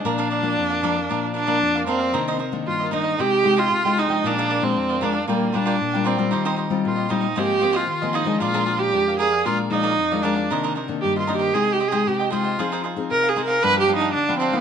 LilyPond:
<<
  \new Staff \with { instrumentName = "Cavaquinho" } { \time 4/4 \key bes \mixolydian \tempo 4 = 115 <d' bes' d'' f''>16 <d' bes' d'' f''>16 <d' bes' d'' f''>8. <bes' d'' f''>16 <d' bes' d'' f''>16 <bes' d'' f''>16 <d' bes' d'' f''>8 <d' bes' d'' f''>16 <d' bes' d'' f''>16 r16 <bes' d'' f''>16 <d' bes' d'' f''>16 <bes' d'' f''>16 | <ees' bes' c'' ees''>16 <ees' bes' c'' ees''>16 <ees' bes' c'' ees''>8. <bes' c'' ees''>16 <ees' bes' c'' ees''>16 <bes' c'' ees''>16 <aes' c'' ees'' g''>8 <aes' c'' ees'' g''>16 <aes' c'' ees'' g''>16 r16 <c'' ees'' g''>16 <aes' c'' ees'' g''>16 <c'' ees'' g''>16 | <aes' bes' d'' f''>16 <aes' bes' d'' f''>16 <aes' bes' d'' f''>8. <bes' d'' f''>16 <aes' bes' d'' f''>16 <bes' d'' f''>16 <f' bes' d'' g''>8 <f' bes' d'' g''>16 <f' bes' d'' g''>16 r16 <bes' d'' g''>16 <f' bes' d'' g''>16 <bes' d'' g''>16 | <ees' g' c'' ees''>16 <ees' g' c'' ees''>16 <ees' g' c'' ees''>8. <g' c'' ees''>16 <ees' g' c'' ees''>16 <g' c'' ees''>16 <f' aes' c'' ees''>8 <f' aes' c'' ees''>16 <f' aes' c'' ees''>16 r16 <aes' c'' ees''>16 <f' aes' c'' ees''>16 <aes' c'' ees''>16 |
<aes' bes' d'' f''>16 <aes' bes' d'' f''>16 <aes' bes' d'' f''>8. <bes' d'' f''>16 <aes' bes' d'' f''>16 <bes' d'' f''>16 <aes' bes' d'' f''>8 <aes' bes' d'' f''>16 <aes' bes' d'' f''>16 r16 <bes' d'' f''>16 <aes' bes' d'' f''>16 <bes' d'' f''>16 | <ees' bes' c'' ees''>16 <ees' bes' c'' ees''>16 <ees' bes' c'' ees''>8. <bes' c'' ees''>16 <ees' bes' c'' ees''>16 <bes' c'' ees''>16 <aes' c'' ees'' g''>8 <aes' c'' ees'' g''>16 <aes' c'' ees'' g''>16 r16 <c'' ees'' g''>16 <aes' c'' ees'' g''>16 <c'' ees'' g''>16 | <ees' aes' c'' f''>16 <ees' aes' c'' f''>16 <ees' aes' c'' f''>8. <aes' c'' f''>16 <ees' aes' c'' f''>16 <aes' c'' f''>16 <d' g' b' f''>8 <d' g' b' f''>16 <d' g' b' f''>16 r16 <g' b' f''>16 <d' g' b' f''>16 <g' b' f''>16 | }
  \new Staff \with { instrumentName = "Viola" } { \time 4/4 \key bes \mixolydian d'2~ d'8 d'4 c'8~ | c'8 r8 f'8 ees'8 g'8. f'8. ees'8 | d'8. c'8. d'8 bes8 d'4 c'8~ | c'8 r8 f'8 ees'8 g'8. f'8. ees'8 |
f'8. g'8. aes'8 f'8 ees'4 d'8~ | d'8 r8 \tuplet 3/2 { g'8 f'8 g'8 aes'8 g'8 aes'8 } g'8 f'8~ | f'8 r8 \tuplet 3/2 { bes'8 aes'8 bes'8 b'8 g'8 ees'8 d'8. c'8 b16 } | }
  \new Staff \with { instrumentName = "Nylon-string guitar" } { \time 4/4 \key bes \mixolydian << { <f bes d'>8. <f bes d'>8. <f bes d'>16 r16 <f bes d'>8. <f bes d'>8. <f bes d'>8 | <ees bes d'>8 r16 <ees bes d'>8. <ees bes d'>8 <aes ees' g'>8 <aes ees' g'>8. <aes ees' g'>8 <f aes d'>16~ | <f aes d'>8. <f aes d'>8. <f aes d'>16 r16 <g d' f'>8 <g d' f'>8 r16 <g d' f'>8 <g c' f'>16~ | <g c' f'>8. <g c' f'>8. <g c' f'>16 r16 <f bes c'>8 <f bes c'>8 r16 <f bes c'>8 <f aes d'>16~ |
<f aes d'>16 <f aes d'>8. <f aes d'>8. r16 <f aes d'>8 <f aes d'>8 r16 <f aes d'>16 <f aes d'>8 | <ees bes d'>8 r16 <ees bes d'>8. <ees bes d'>8 <aes ees' g'>8 r16 <aes ees' g'>8. <aes ees' g'>8 | <c' ees' aes'>8 r16 <c' ees' aes'>8. <c' ees' aes'>8 <f b d'>8 <f b d'>8 r16 <f b d'>8 <f bes ees'>16 | } \\ { bes,4 f,4 bes,4 f,4 | c4 g,4 c4 c4 | bes,4 f,4 bes,4 bes,4 | ees4 bes,4 aes,4 ees4 |
bes,4 f,4 bes,4 f,4 | c4 g,4 c4 c4 | f4 c4 g,4 d4 | } >> }
>>